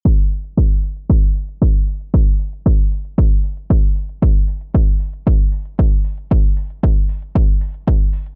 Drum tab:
HH |xxoxxxoxxxoxxxox|xxoxxxoxxxoxxxox|xxoxxxoxxxoxxxox|xxoxxxoxoxoxxxox|
BD |o---o---o---o---|o---o---o---o---|o---o---o---o---|o---o---o---o---|